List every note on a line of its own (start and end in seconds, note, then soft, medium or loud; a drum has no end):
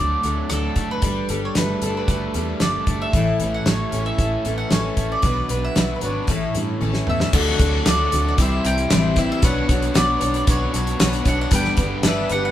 0.00 0.14 D2 medium
0.00 0.24 D3 medium
0.00 0.23 F#3 medium
0.00 0.76 A3 medium
0.00 0.25 D4 soft
0.00 0.24 F#4 soft
0.00 0.23 A4 soft
0.00 0.53 D5 medium
0.23 0.41 D2 medium
0.23 1.03 F#3 medium
0.23 0.50 D4 soft
0.23 0.51 F#4 soft
0.23 0.50 A4 soft
0.23 closed hi-hat medium
0.50 0.68 D2 medium
0.50 1.03 A3 medium
0.50 1.03 D4 medium
0.50 1.04 F#4 medium
0.50 1.04 A4 medium
0.50 0.91 A4 medium
0.50 cross-stick medium
0.50 closed hi-hat medium
0.76 0.93 F#1 medium
0.76 1.07 A3 medium
0.76 kick medium
0.76 closed hi-hat medium
0.91 1.40 B4 medium
1.02 1.20 G1 medium
1.02 1.30 G3 medium
1.02 1.30 D4 medium
1.02 1.30 G4 medium
1.02 1.29 A4 medium
1.02 kick medium
1.02 closed hi-hat medium
1.29 1.47 G1 medium
1.29 2.34 G3 medium
1.29 1.55 D4 soft
1.29 1.56 G4 soft
1.29 1.56 A4 soft
1.29 closed hi-hat medium
1.45 1.57 C#5 medium
1.55 1.73 G1 medium
1.55 1.82 G3 soft
1.55 2.08 A3 medium
1.55 1.82 D4 medium
1.55 1.82 G4 medium
1.55 1.81 A4 medium
1.55 1.96 B4 medium
1.55 snare loud
1.55 closed hi-hat medium
1.82 1.99 G1 medium
1.82 2.36 D4 soft
1.82 2.35 G4 soft
1.82 2.34 A4 medium
1.82 closed hi-hat medium
1.97 2.08 B4 medium
2.08 2.25 G1 medium
2.08 2.85 A3 medium
2.08 2.61 B4 medium
2.08 kick medium
2.08 closed hi-hat medium
2.34 2.52 E2 medium
2.34 3.14 G3 medium
2.34 2.61 D4 soft
2.34 2.62 G4 soft
2.34 2.61 A4 soft
2.34 closed hi-hat medium
2.60 2.78 G1 medium
2.60 3.14 G3 medium
2.60 3.14 D4 medium
2.60 3.15 G4 medium
2.60 3.01 D5 medium
2.60 snare medium
2.60 closed hi-hat medium
2.64 3.15 A4 medium
2.86 3.04 G1 medium
2.86 3.13 A3 medium
2.86 kick medium
2.86 closed hi-hat medium
3.02 3.55 E5 medium
3.13 3.30 A1 medium
3.13 3.40 A2 medium
3.13 3.40 E3 medium
3.13 3.41 A3 medium
3.13 3.40 C#4 medium
3.13 3.40 E4 medium
3.13 3.39 A4 medium
3.13 kick loud
3.13 closed hi-hat medium
3.40 3.57 A1 medium
3.40 4.44 E3 medium
3.40 3.65 A3 soft
3.40 3.66 C#4 soft
3.40 3.67 E4 soft
3.40 3.66 A4 soft
3.40 closed hi-hat medium
3.54 3.67 F#5 medium
3.66 3.83 A1 medium
3.66 3.93 A3 medium
3.66 3.93 C#4 medium
3.66 3.93 E4 medium
3.66 3.92 A4 medium
3.66 4.05 C#5 medium
3.66 snare loud
3.66 closed hi-hat medium
3.92 4.10 A1 medium
3.92 4.46 A3 soft
3.92 4.45 C#4 soft
3.92 4.45 E4 soft
3.92 4.44 A4 soft
3.92 closed hi-hat medium
4.06 4.60 E5 medium
4.18 4.36 A1 medium
4.18 4.96 A3 medium
4.18 kick medium
4.18 closed hi-hat medium
4.45 4.63 A1 medium
4.45 5.24 E3 medium
4.45 4.70 A3 soft
4.45 4.71 C#4 soft
4.45 4.71 E4 medium
4.45 4.71 A4 soft
4.45 closed hi-hat medium
4.58 4.72 F#5 medium
4.70 4.89 A1 medium
4.70 5.24 A3 medium
4.70 5.24 C#4 medium
4.70 5.25 E4 medium
4.70 5.25 A4 medium
4.70 5.08 C#5 medium
4.70 snare loud
4.70 closed hi-hat medium
4.97 5.14 A1 medium
4.97 5.24 A3 medium
4.97 kick medium
4.97 closed hi-hat medium
5.12 5.60 D5 medium
5.22 5.41 B1 medium
5.22 5.50 B2 medium
5.22 5.50 F#3 medium
5.22 5.51 D4 medium
5.22 5.50 F#4 medium
5.22 5.49 B4 medium
5.22 kick loud
5.22 closed hi-hat medium
5.49 5.67 B1 medium
5.49 6.28 F#3 medium
5.49 5.76 F#4 soft
5.49 5.76 B4 soft
5.49 closed hi-hat medium
5.53 5.75 D4 soft
5.65 5.97 E5 medium
5.75 5.94 B1 medium
5.75 6.02 F#3 medium
5.75 6.29 B3 medium
5.75 6.03 D4 medium
5.75 6.02 F#4 medium
5.75 6.00 B4 medium
5.75 snare loud
5.75 closed hi-hat medium
5.96 6.03 B4 medium
6.01 6.20 G#1 medium
6.01 6.30 D4 soft
6.01 6.29 F#4 soft
6.01 6.29 B4 medium
6.01 7.05 C#5 medium
6.01 closed hi-hat medium
6.27 6.46 A1 medium
6.27 6.55 A2 medium
6.27 6.55 E3 medium
6.27 6.56 A3 medium
6.27 6.55 C#4 medium
6.27 6.55 E4 medium
6.27 6.53 A4 medium
6.27 kick medium
6.27 closed hi-hat medium
6.54 6.72 G2 medium
6.54 7.33 E3 medium
6.54 6.80 A3 soft
6.54 6.81 C#4 soft
6.54 6.82 E4 soft
6.54 6.81 A4 soft
6.54 closed hi-hat medium
6.81 6.99 A1 medium
6.81 7.32 A3 medium
6.81 7.34 C#4 medium
6.81 7.34 E4 medium
6.81 7.33 A4 medium
6.81 high tom medium
6.94 snare medium
7.07 7.25 E2 medium
7.07 7.33 A3 medium
7.07 7.20 E5 medium
7.07 mid tom medium
7.20 7.34 E5 medium
7.20 snare medium
7.33 7.53 D2 medium
7.33 7.60 D3 medium
7.33 7.84 F#3 medium
7.33 7.60 A3 medium
7.33 7.60 D4 medium
7.33 7.59 F#4 medium
7.33 7.58 A4 medium
7.33 8.38 A4 medium
7.33 8.38 F#5 medium
7.33 7.88 F#5 loud
7.33 8.38 D6 medium
7.33 kick loud
7.33 crash loud
7.59 7.79 D2 medium
7.59 7.84 A3 medium
7.59 7.85 D4 soft
7.59 7.86 F#4 medium
7.59 7.86 A4 medium
7.59 kick loud
7.59 closed hi-hat medium
7.85 8.06 D2 loud
7.85 8.12 D3 medium
7.85 8.37 F#3 medium
7.85 8.13 A3 medium
7.85 8.13 D4 medium
7.85 8.12 F#4 medium
7.85 8.10 A4 medium
7.85 8.24 D5 loud
7.85 snare loud
7.85 closed hi-hat medium
8.12 8.32 D2 medium
8.12 8.38 D4 soft
8.12 8.39 F#4 medium
8.12 8.38 A4 soft
8.12 closed hi-hat medium
8.28 8.33 D5 medium
8.38 8.58 C2 loud
8.38 8.91 C3 loud
8.38 8.90 E3 loud
8.38 8.90 G3 medium
8.38 8.90 C4 medium
8.38 8.90 E4 medium
8.38 8.63 G4 loud
8.38 9.43 G4 medium
8.38 8.91 C5 medium
8.38 9.43 E5 medium
8.38 8.66 E5 loud
8.38 9.43 C6 medium
8.38 kick loud
8.38 closed hi-hat medium
8.64 8.84 C2 medium
8.64 8.90 G3 medium
8.64 8.91 E4 medium
8.64 8.92 G4 medium
8.64 9.18 G5 loud
8.64 closed hi-hat medium
8.78 closed hi-hat soft
8.90 9.29 A1 medium
8.90 9.17 C3 medium
8.90 9.17 E3 medium
8.90 9.17 G3 medium
8.90 9.17 C4 medium
8.90 9.17 E4 loud
8.90 9.15 G4 medium
8.90 9.16 C5 medium
8.90 snare loud
8.90 closed hi-hat medium
9.16 9.43 G3 soft
9.16 9.43 C4 soft
9.16 9.44 E4 medium
9.16 9.41 G4 medium
9.16 9.43 C5 medium
9.16 9.31 E5 medium
9.16 kick medium
9.16 closed hi-hat medium
9.32 9.44 E5 loud
9.42 9.62 B1 medium
9.42 9.69 B2 medium
9.42 9.93 F#3 medium
9.42 9.70 B3 medium
9.42 11.50 D4 medium
9.42 9.70 D4 medium
9.42 9.69 F#4 medium
9.42 12.51 B4 medium
9.42 9.67 C#5 medium
9.42 9.93 F#5 medium
9.42 11.50 C#6 medium
9.42 kick loud
9.42 closed hi-hat loud
9.69 9.88 B1 medium
9.69 9.95 B3 medium
9.69 9.94 D4 soft
9.69 9.94 F#4 medium
9.69 9.95 C#5 medium
9.69 kick medium
9.69 closed hi-hat medium
9.82 closed hi-hat medium
9.94 10.15 B1 loud
9.94 10.21 B2 medium
9.94 10.46 F#3 medium
9.94 10.22 B3 medium
9.94 10.22 D4 medium
9.94 10.21 F#4 medium
9.94 10.20 C#5 medium
9.94 10.35 D5 loud
9.94 snare loud
9.94 closed hi-hat loud
10.21 10.41 B1 medium
10.21 10.47 D4 medium
10.21 10.48 F#4 soft
10.21 10.47 C#5 medium
10.21 closed hi-hat medium
10.34 10.48 D5 medium
10.34 closed hi-hat soft
10.47 10.67 B1 medium
10.47 11.00 B2 loud
10.47 10.98 F#3 loud
10.47 11.00 B3 medium
10.47 11.00 D4 medium
10.47 10.99 F#4 medium
10.47 11.00 C#5 medium
10.47 10.73 C#5 loud
10.47 kick loud
10.47 closed hi-hat medium
10.73 10.93 B1 medium
10.73 10.99 B3 medium
10.73 11.00 D4 medium
10.73 11.00 F#4 medium
10.73 11.24 C#5 loud
10.73 closed hi-hat medium
10.87 closed hi-hat soft
10.99 11.19 B1 medium
10.99 11.26 B2 medium
10.99 11.50 F#3 medium
10.99 11.26 B3 medium
10.99 11.26 D4 medium
10.99 11.25 F#4 medium
10.99 11.24 C#5 medium
10.99 snare loud
10.99 closed hi-hat loud
11.13 closed hi-hat medium
11.25 11.45 B1 loud
11.25 11.51 B3 medium
11.25 11.51 D4 soft
11.25 11.52 F#4 soft
11.25 11.52 C#5 medium
11.25 11.40 F#5 loud
11.25 kick medium
11.25 closed hi-hat medium
11.41 11.53 F#5 loud
11.51 11.71 G1 medium
11.51 12.04 G2 medium
11.51 12.04 D3 medium
11.51 11.78 G3 medium
11.51 11.78 B3 medium
11.51 11.78 D4 medium
11.51 11.78 G4 medium
11.51 11.76 B4 medium
11.51 12.51 G5 medium
11.51 12.51 D6 medium
11.51 kick loud
11.51 closed hi-hat loud
11.55 12.02 G5 loud
11.65 snare soft
11.77 11.97 G1 medium
11.77 12.02 G3 medium
11.77 12.04 B3 medium
11.77 12.04 D4 soft
11.77 12.04 G4 medium
11.77 12.04 B4 medium
11.77 kick medium
11.77 closed hi-hat medium
12.03 12.23 G1 loud
12.03 12.30 G3 medium
12.03 12.31 B3 medium
12.03 12.31 D4 medium
12.03 12.31 G4 medium
12.03 12.29 B4 medium
12.03 snare loud
12.03 closed hi-hat medium
12.08 12.31 E5 medium
12.29 12.49 G1 medium
12.29 12.51 D4 soft
12.29 12.51 G4 medium
12.29 12.51 B4 medium
12.29 12.44 F#5 loud
12.29 closed hi-hat medium
12.45 12.51 F#5 medium